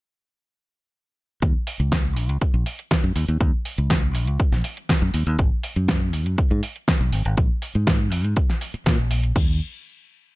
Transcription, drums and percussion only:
1.42 kick loud
1.42 closed hi-hat soft
1.67 open hi-hat medium
1.80 closed hi-hat medium
1.92 kick loud
1.92 snare loud
1.92 closed hi-hat soft
2.17 open hi-hat loud
2.29 closed hi-hat medium
2.41 kick loud
2.41 closed hi-hat medium
2.66 open hi-hat medium
2.79 closed hi-hat medium
2.91 kick loud
2.91 snare loud
2.91 closed hi-hat soft
3.16 open hi-hat loud
3.28 closed hi-hat medium
3.40 kick loud
3.40 closed hi-hat soft
3.65 open hi-hat loud
3.78 closed hi-hat medium
3.90 kick loud
3.90 snare loud
3.90 closed hi-hat soft
4.15 open hi-hat loud
4.27 closed hi-hat medium
4.39 kick loud
4.39 closed hi-hat soft
4.53 snare soft
4.64 open hi-hat loud
4.77 closed hi-hat medium
4.89 kick loud
4.89 snare loud
4.89 closed hi-hat soft
5.14 open hi-hat loud
5.27 closed hi-hat medium
5.39 kick loud
5.39 closed hi-hat soft
5.63 open hi-hat loud
5.76 closed hi-hat medium
5.88 kick loud
5.88 snare loud
5.88 closed hi-hat soft
6.13 open hi-hat loud
6.26 closed hi-hat medium
6.38 kick loud
6.38 closed hi-hat medium
6.63 open hi-hat loud
6.76 closed hi-hat medium
6.88 kick loud
6.88 snare loud
6.88 closed hi-hat soft
7.13 open hi-hat loud
7.25 closed hi-hat medium
7.37 kick loud
7.37 closed hi-hat soft
7.62 open hi-hat loud
7.75 closed hi-hat medium
7.87 kick loud
7.87 snare loud
7.87 closed hi-hat soft
8.12 open hi-hat loud
8.25 closed hi-hat medium
8.36 kick loud
8.36 closed hi-hat medium
8.50 snare soft
8.61 open hi-hat loud
8.74 closed hi-hat medium
8.86 kick loud
8.86 snare loud
8.86 closed hi-hat soft
9.11 open hi-hat loud
9.24 closed hi-hat medium
9.36 kick loud
9.36 crash medium

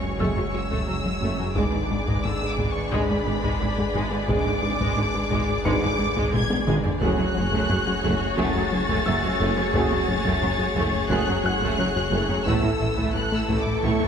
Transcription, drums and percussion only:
0.20 taiko medium
0.37 taiko low medium
0.71 taiko medium
1.05 taiko low soft
1.56 taiko loud
2.07 taiko medium
2.58 taiko medium
2.92 taiko medium
3.09 taiko low medium
3.44 taiko medium
3.78 taiko low medium
4.29 taiko loud
4.81 taiko medium
5.31 taiko medium
5.65 taiko medium
5.83 taiko low medium
6.17 taiko medium
6.34 taiko low-mid medium
6.50 taiko high loud
6.67 taiko mid loud
6.84 taiko low loud
7.01 taiko loud
7.52 taiko medium
8.04 taiko medium
8.38 taiko medium
8.55 taiko low medium
8.89 taiko medium
9.23 taiko low medium
9.74 taiko loud
10.25 taiko medium
10.76 taiko medium
11.10 taiko medium
11.27 taiko low medium
11.62 taiko medium
11.95 taiko low medium
12.47 taiko loud
12.97 taiko medium
13.49 taiko medium
13.83 taiko medium
14.00 taiko low medium

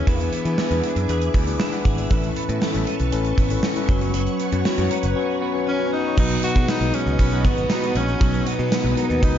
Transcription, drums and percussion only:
0.07 kick loud
0.07 closed hi-hat medium
0.07 shaker medium
0.20 closed hi-hat soft
0.20 shaker soft
0.33 closed hi-hat medium
0.33 shaker soft
0.45 closed hi-hat medium
0.45 shaker soft
0.58 snare loud
0.58 shaker medium
0.71 closed hi-hat soft
0.71 shaker soft
0.83 closed hi-hat medium
0.96 closed hi-hat medium
0.96 shaker soft
1.09 closed hi-hat medium
1.09 shaker medium
1.21 closed hi-hat soft
1.21 shaker medium
1.34 kick medium
1.34 closed hi-hat medium
1.34 shaker medium
1.47 closed hi-hat medium
1.47 shaker medium
1.59 snare loud
1.59 shaker medium
1.72 closed hi-hat soft
1.72 shaker medium
1.85 kick medium
1.85 closed hi-hat medium
1.85 shaker medium
1.97 closed hi-hat soft
1.97 shaker soft
2.10 kick loud
2.10 closed hi-hat medium
2.10 shaker medium
2.23 closed hi-hat soft
2.23 shaker soft
2.36 closed hi-hat medium
2.36 shaker soft
2.48 closed hi-hat medium
2.48 shaker soft
2.61 snare loud
2.61 shaker medium
2.74 closed hi-hat soft
2.74 shaker soft
2.87 closed hi-hat medium
2.99 closed hi-hat medium
2.99 shaker soft
3.12 closed hi-hat medium
3.12 shaker medium
3.25 closed hi-hat soft
3.25 shaker medium
3.38 kick medium
3.38 closed hi-hat medium
3.38 shaker medium
3.50 closed hi-hat medium
3.50 shaker medium
3.63 snare loud
3.63 shaker medium
3.76 closed hi-hat soft
3.76 shaker medium
3.89 kick loud
3.89 closed hi-hat medium
3.89 shaker medium
4.01 closed hi-hat soft
4.01 shaker soft
4.14 closed hi-hat medium
4.14 shaker medium
4.27 closed hi-hat soft
4.27 shaker soft
4.40 closed hi-hat medium
4.40 shaker soft
4.52 closed hi-hat medium
4.52 shaker soft
4.65 snare loud
4.65 shaker medium
4.77 closed hi-hat soft
4.77 shaker soft
4.91 closed hi-hat medium
5.03 closed hi-hat medium
5.03 shaker medium
6.18 kick loud
6.18 crash loud
6.18 shaker medium
6.30 shaker medium
6.43 closed hi-hat medium
6.56 kick medium
6.56 shaker soft
6.68 snare loud
6.68 closed hi-hat medium
6.68 tambourine medium
6.68 shaker medium
6.81 closed hi-hat soft
6.81 shaker soft
6.94 closed hi-hat medium
6.94 shaker soft
7.07 shaker soft
7.19 kick medium
7.19 closed hi-hat medium
7.19 shaker medium
7.32 shaker medium
7.45 kick loud
7.45 closed hi-hat medium
7.45 shaker medium
7.58 shaker medium
7.70 snare loud
7.70 closed hi-hat loud
7.70 tambourine medium
7.70 shaker medium
7.83 shaker medium
7.96 closed hi-hat medium
8.08 shaker soft
8.21 kick loud
8.21 closed hi-hat medium
8.21 shaker medium
8.34 shaker soft
8.46 closed hi-hat medium
8.59 shaker soft
8.72 snare loud
8.72 closed hi-hat medium
8.72 tambourine medium
8.72 shaker medium
8.85 shaker soft
8.97 closed hi-hat medium
8.97 shaker soft
9.10 shaker soft
9.23 kick medium
9.23 closed hi-hat medium
9.23 shaker medium

